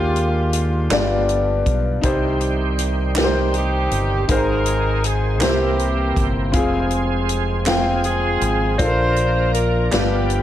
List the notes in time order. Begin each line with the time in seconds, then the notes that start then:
Already playing: D#2 D#3 G#3 A#3 D4 F4 G4
0.16 closed hi-hat
0.53 closed hi-hat
0.90 G1 G2 G#3 D4 F4 G4 D5, snare, clap, closed hi-hat
0.96 B3
1.29 closed hi-hat
1.66 B1, kick, closed hi-hat
2.01 C2 C3 D#3 G3 C4 D#4 G4 C5, kick, closed hi-hat
2.41 closed hi-hat
2.79 closed hi-hat
3.15 D#4 G4 A#4, snare, clap, closed hi-hat
3.24 C5
3.54 C4 D#4 G4, closed hi-hat
3.91 G1, closed hi-hat
4.27 G#1 G#2 D#3 G#3 C4 D#4 G#4 A#4 C5, kick, closed hi-hat
4.66 closed hi-hat
5.04 G#4, closed hi-hat
5.40 C2 C3 E3 A#3 C4 E4 G4 C5, snare, clap, closed hi-hat
5.79 closed hi-hat
6.16 G1, kick, closed hi-hat
6.52 F1 F3 G#3 C4 F4 G4 G#4, kick, closed hi-hat
6.60 G#4
6.91 closed hi-hat
7.29 closed hi-hat
7.66 C4 F4 G5, snare, clap, closed hi-hat
8.04 C4 F4 G#4, closed hi-hat
8.41 G#1, closed hi-hat
8.78 A#1 A#2 F3 A#3 D4 F4 G#4 A4 C5, kick, closed hi-hat
8.86 A#4
9.16 closed hi-hat
9.54 A#4, closed hi-hat
9.91 G1 G2 F3 G3 B3 D4 F4 G4 B4, snare, clap, closed hi-hat
10.30 closed hi-hat